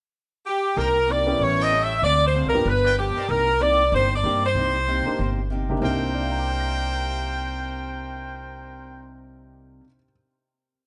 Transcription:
0.46 G4
0.75 C2 C3 A#3 D#4 G4 A#4 C5 G5
1.07 C3 A#3 D#4 G4 D5
1.26 B3 C#4 E4 G4
1.38 A1 A2 G3 C#4 E4
1.42 C#5
1.58 E4 A4 C#5 G5
1.63 D#5
1.71 A2 G3 C#4 E4
1.83 E5
2.02 D2 D3 G#3 C4 F4 D5
2.27 C5
2.33 D3 G#3 C4 F4
2.45 C2 A#4
2.53 F#1 B3 D4 F4 G4
2.65 G1 G2 F3 B3 D4 B4
2.85 F4 B4 D5 G5
2.96 G2 F3 B3 D4 G4
3.16 D#4 A#4 C5 D5, muted upright bass stroke
3.29 C2 C3 A#3 D#4 G4 A#4
3.60 C3 A#3 D#4 G4 D5
3.91 G1 C3 A#3 D#4 G4 C5
4.15 D5
4.23 G2 C3 A#3 D4 D#4 G4
4.46 C5
4.55 C2 C3 A#3 D#4 G4
4.88 C3 A#3 D#4 G4
5.06 A#3 D4 D#4 G4, muted upright bass stroke
5.17 G1 C3 A#3 D#4 G4
5.50 C3 A#3 D#4 G4
5.69 C3 A#3 D4 D#4 G4
5.77 C3
5.81 C2 C3 A#3 C4 D4 D#4 A#4 C5 G5
5.93 G4
6.14 D5
6.22 F5
6.30 A#5
6.39 D6
6.49 F6
6.60 A#6
6.72 D7

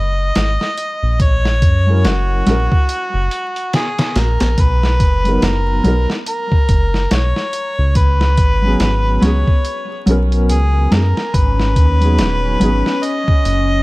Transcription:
Already playing: F#1 D#5
0.35 G#1, snare, closed hi-hat
0.61 snare
0.78 closed hi-hat
1.03 A#1
1.20 C#5, kick, closed hi-hat
1.45 snare
1.62 F#2, kick, closed hi-hat
1.86 F#3 C#4 E4
1.90 A#4
2.04 F#1 F#4, snare, closed hi-hat
2.46 A#1 F#3 C#4 E4, snare, closed hi-hat
2.51 A#4
2.72 kick
2.89 closed hi-hat
3.14 F#1
3.31 closed hi-hat
3.56 closed hi-hat
3.73 G#4, snare, closed hi-hat
3.98 snare, closed hi-hat
4.16 A#1 A#4, snare, closed hi-hat
4.40 A#1, snare, closed hi-hat
4.58 B1 B4, kick, closed hi-hat
4.83 snare
5.00 F#1, kick, closed hi-hat
5.24 F#3 B3 D#4, closed hi-hat
5.28 A#4
5.42 F#1 A#4, snare, closed hi-hat
5.83 B1 F#3 B3 D#4, closed hi-hat
5.88 A#4
6.10 snare
6.26 A#4, closed hi-hat
6.52 kick
6.69 F#1, kick, closed hi-hat
6.94 snare
7.11 B1 C#5, snare, closed hi-hat
7.36 snare
7.53 closed hi-hat
7.79 C#2
7.95 B4, kick, closed hi-hat
8.21 snare
8.38 G#1, kick, closed hi-hat
8.62 F#3 B3 C#4
8.66 G#4
8.80 G#1, snare, closed hi-hat
9.21 C#2 F#3 B3 C#4 C#5, snare, closed hi-hat
9.26 G#4
9.47 kick
9.65 closed hi-hat
10.06 B1 F#3 B3 C#4, closed hi-hat
10.10 A#4
10.32 closed hi-hat
10.50 C#2 G#4, closed hi-hat
10.91 F#2 F#3 B3 C#4 A#4, snare, closed hi-hat
10.95 G#4
11.17 snare
11.33 G#1 C#4 B4, kick, closed hi-hat
11.60 snare
11.76 D#2, kick, closed hi-hat
12.00 F#3 B3 D#4, closed hi-hat
12.04 G#4
12.19 D#1, snare, closed hi-hat
12.60 G#1 F#3 B3 D#4, closed hi-hat
12.64 G#4
12.86 snare
13.03 D#5, closed hi-hat
13.28 kick
13.45 F#1, closed hi-hat

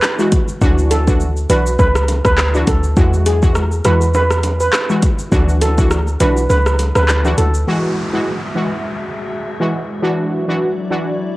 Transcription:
0.03 cross-stick, clap, shaker
0.19 E3 G#3 F#4, shaker
0.32 kick, closed hi-hat, low bongo, shaker
0.48 shaker
0.61 D2 E3 D4 F#4, kick, high bongo, shaker
0.78 shaker
0.91 A4, closed hi-hat, high bongo, shaker
1.07 E3 D4 F#4, kick, shaker
1.20 shaker
1.36 shaker
1.49 B1 E3 D4 F#4 B4, closed hi-hat, shaker
1.66 shaker
1.79 C#2 B4, kick, high bongo, shaker
1.95 cross-stick, shaker
2.08 closed hi-hat, high bongo, shaker
2.25 D2 B4, kick, cross-stick, shaker
2.38 cross-stick, clap, shaker
2.54 E3 D4 F#4, shaker
2.67 D2 A4, kick, closed hi-hat, low bongo, shaker
2.83 shaker
2.97 E2 E3 G#3 F#4, kick, high bongo, shaker
3.14 shaker
3.26 G#4, closed hi-hat, high bongo, shaker
3.42 E3 G#3 F#4, kick, shaker
3.55 cross-stick, shaker
3.72 shaker
3.85 E2 E3 G#3 F#4 B4, cross-stick, closed hi-hat, shaker
4.01 shaker
4.14 B4, high bongo, shaker
4.31 cross-stick, shaker
4.43 closed hi-hat, high bongo, shaker
4.60 B4, shaker
4.73 cross-stick, clap, shaker
4.90 E3 G#3 F#4, shaker
5.02 kick, closed hi-hat, low bongo, shaker
5.19 shaker
5.32 D2 E3 D4 F#4, kick, high bongo, shaker
5.49 shaker
5.61 A4, closed hi-hat, high bongo, shaker
5.78 E3 D4 F#4, kick, shaker
5.91 cross-stick, shaker
6.07 shaker
6.20 B1 E3 D4 F#4 B4, closed hi-hat, high bongo, low bongo, shaker
6.37 shaker
6.50 C#2 B4, high bongo, shaker
6.66 cross-stick, shaker
6.79 closed hi-hat, high bongo, shaker
6.95 D2 B4, cross-stick, high bongo, shaker
7.08 cross-stick, clap, shaker
7.25 E3 D4 F#4, high bongo, shaker
7.38 D2 A4, closed hi-hat, low bongo, shaker
7.54 shaker
7.67 E3 G#3 F#4 E5, downlifter
8.13 E3 G#3 F#4
8.55 E3 G#3 F#4
9.60 E3 G#3 F#4
10.02 E3 F#3 D4 E4 F#4 D5
10.48 E3 D4 F#4
10.91 E3 D4 F#4

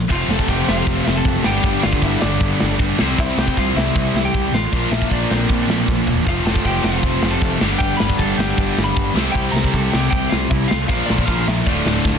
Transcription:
0.09 F1 F2 C3 F3 A3 C4 F4, kick, crash
0.15 F5
0.28 F1 A4, snare
0.33 A5
0.39 kick
0.48 F1 G4 G5, kick, crash
0.68 F1 F4 F5, snare
0.87 F1, kick, crash
1.06 F1 E5, snare
1.16 A4 A5
1.25 F#1, kick, crash
1.43 G1 G2 D3 G3 B3 D4 G4 G5, snare
1.63 G1, kick, crash
1.83 G1 F4 F5, snare
1.93 kick
2.02 G1 E4 E5, kick, crash
2.21 G1 D4 D5, snare
2.40 G1, kick, crash
2.60 G1, snare
2.79 G1, kick, crash
2.98 C2 C3 G3 C4 E4 G4 C5, snare
3.18 C2 E4 E5, kick, crash
3.37 C2 G4 G5, snare
3.48 kick
3.57 C2 F4 F5, kick, crash
3.76 C2 E4 E5, snare
3.95 C2, kick, crash
4.14 C2, snare
4.24 G4 G5
4.34 C2, kick, crash
4.53 A1 F4 F5, snare
4.72 A#1 A#2 F3 A#3 D4 F4 A#4, kick, crash
4.91 A#1 E4 E5, snare
5.02 kick
5.11 A#1 D4 D5, kick, crash
5.30 A#1 C4 C5, snare
5.49 A#1, kick, crash
5.67 A#1, snare
5.88 A#1, kick, snare
6.05 E1, floor tom
6.26 F1 F2 C3 F3 A3 C4 F4 F5, kick, crash
6.45 F1 A4 A5, snare
6.56 kick
6.65 F1 G4 G5, kick, crash
6.84 F1 F4 F5, snare
7.02 F1, kick, crash
7.22 F1, snare
7.31 A4 A5
7.41 F1, kick, crash
7.60 G1 G2 D3 G3 B3 D4 G4, snare
7.79 G1 G4 G5, kick, crash
7.97 B4 B5, snare
8.01 G1
8.10 kick
8.18 G1 A4 A5, kick, crash
8.37 G1 G4 G5, snare
8.58 G1, kick, crash
8.78 G1, snare
8.84 B5
8.88 B4
8.97 G1, kick, crash
9.15 C2 C3 G3 C4 E4 G4 C5, snare
9.32 C2 G5, kick, crash
9.36 G4
9.52 C2 A#4 A#5
9.57 snare
9.64 kick
9.72 C2 A4 A5, kick, crash
9.92 C2 G4 G5, snare
10.11 C2 G5, kick, crash
10.15 G4
10.29 C2 F4 F5, snare
10.50 C2 E4 E5, kick, crash
10.68 C2 F4 F5, snare
10.88 A#1 A#2 F3 A#3 D4 F4 A#4 F5, kick, crash
11.06 D4 D5, snare
11.11 A#1
11.18 kick
11.25 A#1 F4 F5, kick, crash
11.48 A#1 E4 E5, snare
11.66 D1 D2 A2 D3 A3 D4 F4 D5, kick, crash
11.85 D1, snare
12.05 D1, kick, snare

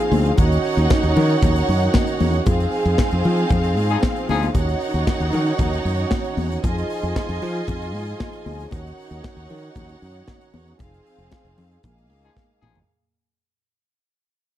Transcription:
Already playing: F3 C4 D#4 G#4 F5
0.11 D2, open hi-hat, high conga
0.26 closed hi-hat
0.38 D#2 D#3 C#4 D#4 F#4 C#5 F#5, kick, closed hi-hat, muted conga
0.52 closed hi-hat
0.64 open hi-hat
0.77 D#2, closed hi-hat
0.90 kick, snare, high conga
1.03 D#2, closed hi-hat
1.16 D#3, open hi-hat, low conga
1.30 closed hi-hat
1.42 D#2, kick, closed hi-hat, muted conga, low conga
1.56 closed hi-hat
1.69 F#2, open hi-hat, muted conga
1.80 closed hi-hat
1.94 kick, snare, high conga
2.07 closed hi-hat
2.20 E2, open hi-hat, high conga
2.34 closed hi-hat
2.46 F2 F3 C4 D#4 G#4 F5, kick, closed hi-hat, muted conga
2.60 closed hi-hat
2.72 open hi-hat
2.85 F2, closed hi-hat
2.98 kick, snare, high conga
3.11 F2, closed hi-hat
3.24 F3, open hi-hat, low conga
3.38 closed hi-hat
3.49 F2, kick, closed hi-hat, muted conga, low conga
3.64 closed hi-hat
3.77 G#2, open hi-hat, muted conga
3.89 F3 D#4 G#4, closed hi-hat
4.03 kick, snare, high conga
4.16 closed hi-hat
4.29 D2 F3 D#4 G#4, open hi-hat, high conga
4.43 closed hi-hat, high conga
4.55 D#2 D#3 C#4 D#4 F#4 C#5 F#5, kick, closed hi-hat, muted conga
4.69 closed hi-hat
4.80 open hi-hat
4.94 D#2, closed hi-hat
5.07 kick, snare, high conga
5.20 D#2, closed hi-hat
5.32 D#3, open hi-hat, low conga
5.47 closed hi-hat
5.59 D#2, kick, closed hi-hat, muted conga, low conga
5.73 closed hi-hat
5.85 F#2, open hi-hat, muted conga
5.97 closed hi-hat
6.11 kick, snare, high conga
6.24 closed hi-hat
6.37 E2, open hi-hat, high conga
6.52 closed hi-hat
6.63 F2 F3 D#4 F4 G#4 D#5 G#5, kick, closed hi-hat, muted conga
6.78 closed hi-hat
6.90 open hi-hat
7.03 F2, closed hi-hat
7.16 kick, snare, high conga
7.29 F2, closed hi-hat
7.42 F3, open hi-hat, low conga
7.55 closed hi-hat
7.67 F2, kick, closed hi-hat, muted conga, low conga
7.82 closed hi-hat
7.94 G#2, open hi-hat, muted conga
8.06 closed hi-hat
8.20 kick, snare, high conga
8.33 closed hi-hat
8.46 D2, open hi-hat, high conga
8.60 closed hi-hat
8.71 D#2 D#3 C#4 D#4 F#4 C#5 F#5, kick, closed hi-hat, muted conga
8.86 closed hi-hat
8.98 open hi-hat
9.11 D#2, closed hi-hat
9.24 kick, snare, high conga
9.37 D#2, closed hi-hat
9.49 D#3, open hi-hat, low conga
9.63 closed hi-hat
9.75 D#2, kick, closed hi-hat, muted conga, low conga
9.89 closed hi-hat
10.02 F#2, open hi-hat
10.14 closed hi-hat
10.28 kick, snare, high conga
10.41 closed hi-hat
10.54 E2, open hi-hat, high conga
10.68 closed hi-hat
10.79 F1 F3 C4 D#4 G#4 F5, kick, closed hi-hat, muted conga
10.94 closed hi-hat
11.06 open hi-hat
11.18 F1, closed hi-hat
11.32 kick, snare, high conga
11.45 F1, closed hi-hat
11.58 F2, open hi-hat, low conga
11.72 closed hi-hat
11.83 A#1 G#3 A#3 G#4 F5, kick, closed hi-hat, muted conga, low conga
11.98 closed hi-hat
12.09 C#2, open hi-hat, muted conga
12.23 F3 D#4 G#4, closed hi-hat
12.37 kick, snare, high conga
12.62 A1 F3 D#4 G#4, mid tom, high conga
12.75 floor tom

